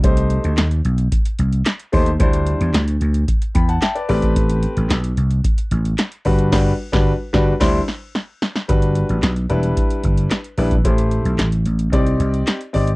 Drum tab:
CC |----------------|----------------|----------------|x-------x-------|
HH |xxxxxxxxxxxxxxox|xxxxxxxxxxxxxxox|xxxxxxxxxxxxxxox|----------------|
CP |----x-------x---|----x-------x---|----x-------x---|----------------|
SD |----o-------o---|----o-------o---|----o-------o---|o--o--o-o-o-o-oo|
BD |o-------o-----o-|o-------o-o----o|o-------o-----o-|o--o--o-o-------|

CC |----------------|----------------|
HH |xxxxxxxxxxxxxxox|xxxxxxxxxxxxxxox|
CP |----x-------x---|----x-------x---|
SD |----o-------o---|----o-------o---|
BD |o-------o-o----o|o-------o-----o-|